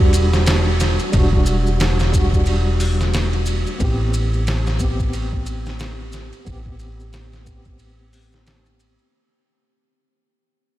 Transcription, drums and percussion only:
0.13 ride medium
0.13 maracas medium
0.33 snare soft
0.33 maracas soft
0.46 snare loud
0.46 ride medium
0.46 maracas soft
0.80 snare soft
0.80 ride medium
0.80 maracas medium
0.99 ride soft
0.99 maracas soft
1.13 kick loud
1.13 ride medium
1.13 maracas soft
1.33 kick medium
1.46 ride medium
1.46 maracas medium
1.67 maracas soft
1.80 snare loud
1.80 ride medium
1.80 maracas medium
1.99 snare medium
1.99 maracas soft
2.13 kick medium
2.13 ride medium
2.13 maracas medium
2.33 kick medium
2.33 maracas soft
2.46 ride medium
2.46 maracas soft
2.80 open hi-hat medium
2.80 maracas medium
3.00 snare soft
3.00 maracas soft
3.14 snare loud
3.14 ride medium
3.14 maracas soft
3.33 ride soft
3.46 ride medium
3.46 maracas medium
3.67 maracas soft
3.80 kick loud
3.80 ride medium
3.80 maracas soft
4.13 ride medium
4.13 maracas medium
4.34 maracas soft
4.47 snare loud
4.47 ride medium
4.47 maracas soft
4.66 snare soft
4.66 maracas soft
4.79 kick medium
4.79 ride medium
4.79 maracas medium
5.00 kick medium
5.00 maracas soft
5.13 ride medium
5.13 maracas medium
5.33 kick medium
5.46 ride medium
5.46 maracas medium
5.66 snare soft
5.66 maracas soft
5.79 snare loud
5.79 ride medium
5.79 maracas medium
6.12 snare soft
6.12 ride medium
6.12 maracas medium
6.33 ride soft
6.33 maracas soft
6.46 kick loud
6.46 ride medium
6.46 maracas soft
6.66 kick medium
6.79 ride medium
6.79 maracas medium
7.00 maracas soft
7.13 snare loud
7.13 ride medium
7.13 maracas soft
7.33 snare soft
7.33 maracas soft
7.46 kick medium
7.46 ride medium
7.46 maracas medium
7.65 kick medium
7.65 maracas soft
7.79 ride medium
7.79 maracas soft
8.13 open hi-hat medium
8.13 maracas medium
8.32 snare soft
8.32 maracas soft
8.47 snare loud
8.47 ride medium
8.47 maracas medium
8.66 ride soft
8.66 maracas soft
8.80 ride medium
8.80 maracas medium
8.98 maracas soft

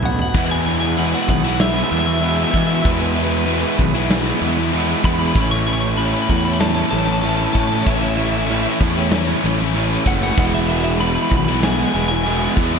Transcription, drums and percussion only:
0.03 floor tom medium
0.19 floor tom medium
0.34 kick loud
0.34 crash loud
0.34 crash medium
0.66 crash medium
0.97 crash loud
1.29 kick medium
1.29 crash medium
1.60 snare loud
1.60 crash medium
1.91 crash medium
2.23 crash medium
2.54 kick medium
2.54 crash medium
2.85 kick loud
2.85 crash medium
3.16 crash medium
3.48 crash medium
3.79 kick medium
3.79 crash medium
4.11 snare loud
4.11 crash loud
4.42 crash medium
4.73 crash medium
5.04 kick medium
5.04 crash medium
5.35 kick loud
5.35 crash loud
5.67 crash medium
5.98 crash loud
6.29 kick medium
6.29 crash medium
6.61 snare loud
6.61 crash medium
6.92 crash medium
7.24 crash medium
7.55 kick medium
7.55 crash medium
7.87 kick loud
7.87 crash medium
8.18 crash medium
8.49 crash medium
8.80 kick medium
8.80 crash medium
9.12 snare loud
9.12 crash medium
9.43 crash medium
9.74 crash medium
10.06 kick loud
10.06 crash medium
10.37 kick loud
10.37 crash loud
10.69 crash medium
11.00 crash loud
11.32 kick medium
11.32 crash medium
11.47 snare soft
11.63 snare loud
11.63 crash medium
11.95 crash medium
12.26 crash medium
12.57 kick medium
12.57 crash medium

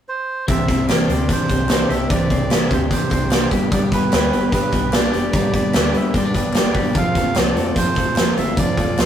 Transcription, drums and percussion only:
0.48 kick loud
0.48 closed hi-hat medium
0.69 kick medium
0.69 snare soft
0.69 closed hi-hat medium
0.88 snare loud
0.88 clap medium
0.88 closed hi-hat medium
1.09 closed hi-hat medium
1.29 kick medium
1.29 closed hi-hat medium
1.49 kick medium
1.49 clap medium
1.49 closed hi-hat medium
1.69 snare loud
1.69 clap medium
1.69 closed hi-hat medium
1.90 closed hi-hat medium
2.10 kick loud
2.10 closed hi-hat medium
2.30 kick medium
2.30 closed hi-hat medium
2.50 snare loud
2.50 clap medium
2.50 closed hi-hat medium
2.71 kick medium
2.71 closed hi-hat medium
2.91 kick medium
2.91 closed hi-hat medium
3.11 kick medium
3.11 clap medium
3.11 closed hi-hat medium
3.31 snare loud
3.31 clap medium
3.31 closed hi-hat loud
3.51 kick medium
3.51 closed hi-hat medium
3.72 kick loud
3.72 closed hi-hat medium
3.92 kick medium
3.92 snare soft
3.92 closed hi-hat medium
4.12 snare loud
4.12 clap medium
4.12 closed hi-hat medium
4.33 closed hi-hat medium
4.52 kick loud
4.52 closed hi-hat medium
4.72 kick medium
4.72 clap medium
4.72 closed hi-hat medium
4.93 snare loud
4.93 clap medium
4.93 closed hi-hat medium
5.13 closed hi-hat medium
5.33 kick loud
5.33 closed hi-hat medium
5.54 kick medium
5.54 closed hi-hat medium
5.73 snare loud
5.73 clap medium
5.73 closed hi-hat medium
5.94 closed hi-hat medium
6.14 kick medium
6.14 closed hi-hat medium
6.35 kick medium
6.35 clap medium
6.35 closed hi-hat medium
6.53 snare loud
6.53 clap medium
6.53 closed hi-hat medium
6.75 kick medium
6.75 open hi-hat medium
6.95 kick loud
6.95 closed hi-hat medium
7.15 kick medium
7.15 snare soft
7.15 closed hi-hat medium
7.35 snare loud
7.35 clap medium
7.35 closed hi-hat medium
7.56 closed hi-hat medium
7.76 kick medium
7.76 closed hi-hat medium
7.96 kick medium
7.96 clap medium
7.96 closed hi-hat medium
8.16 snare loud
8.16 clap medium
8.16 closed hi-hat loud
8.37 closed hi-hat medium
8.57 kick loud
8.57 closed hi-hat medium
8.77 kick medium
8.77 closed hi-hat medium
8.98 snare loud
8.98 clap medium
8.98 closed hi-hat medium

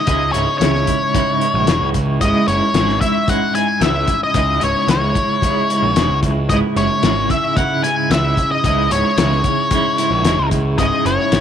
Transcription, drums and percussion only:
0.07 kick medium
0.07 closed hi-hat medium
0.34 closed hi-hat medium
0.61 snare medium
0.61 closed hi-hat medium
0.75 snare soft
0.87 kick medium
0.87 closed hi-hat medium
1.15 kick loud
1.15 closed hi-hat medium
1.41 closed hi-hat medium
1.67 snare medium
1.67 closed hi-hat medium
1.94 kick medium
1.94 closed hi-hat medium
2.21 kick medium
2.21 closed hi-hat medium
2.48 closed hi-hat soft
2.74 snare medium
2.74 closed hi-hat medium
2.89 snare soft
3.01 kick medium
3.01 closed hi-hat medium
3.28 kick medium
3.28 closed hi-hat medium
3.55 closed hi-hat medium
3.81 snare medium
3.81 closed hi-hat medium
4.08 kick medium
4.08 closed hi-hat medium
4.34 kick medium
4.34 closed hi-hat medium
4.61 closed hi-hat medium
4.88 snare medium
4.88 closed hi-hat medium
5.15 kick medium
5.15 closed hi-hat medium
5.42 kick medium
5.42 closed hi-hat medium
5.70 closed hi-hat medium
5.96 snare medium
5.96 closed hi-hat medium
6.23 kick medium
6.23 closed hi-hat medium
6.49 kick medium
6.49 closed hi-hat medium
6.77 closed hi-hat soft
7.03 snare loud
7.03 closed hi-hat medium
7.30 kick medium
7.30 closed hi-hat soft
7.57 kick medium
7.57 closed hi-hat medium
7.84 closed hi-hat medium
8.11 snare medium
8.11 closed hi-hat medium
8.37 kick medium
8.37 closed hi-hat medium
8.64 kick medium
8.64 closed hi-hat medium
8.91 closed hi-hat medium
9.18 snare loud
9.18 closed hi-hat medium
9.32 snare soft
9.44 kick medium
9.44 closed hi-hat medium
9.71 kick medium
9.71 closed hi-hat medium
9.98 closed hi-hat medium
10.25 snare medium
10.25 closed hi-hat medium
10.51 kick medium
10.51 closed hi-hat medium
10.78 kick medium
10.78 closed hi-hat medium
11.06 closed hi-hat medium
11.32 snare medium
11.32 closed hi-hat medium

